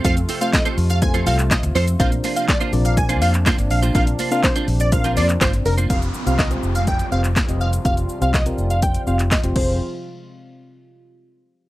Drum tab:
CC |----------------|----------------|----------------|----------------|
HH |xxoxxxoxxxoxxxox|xxoxxxoxxxoxxxox|xxoxxxoxxxoxxxox|xx-xxx-xxx-xxx-x|
SH |xxxxxxxxxxxxxxxx|xxxxxxxxxxxxxxxx|xxxxxxxxxxxxxxxx|xxxxxxxxxxxxxxxx|
CP |----x------xx---|----x------xx---|----x------xx---|----x------xx---|
SD |----o-------o---|----o-------o---|----o-------o---|----o-------o---|
BD |o---o---o---o---|o---o---o---o---|o---o---o---o---|o---o---o---o---|

CC |--------------x-|----------------|
HH |xx-xxx-xxx-xxx--|----------------|
SH |xxxxxxxxxxxxxx--|----------------|
CP |----x------xx---|----------------|
SD |----o-------o---|----------------|
BD |o---o---o---o-o-|----------------|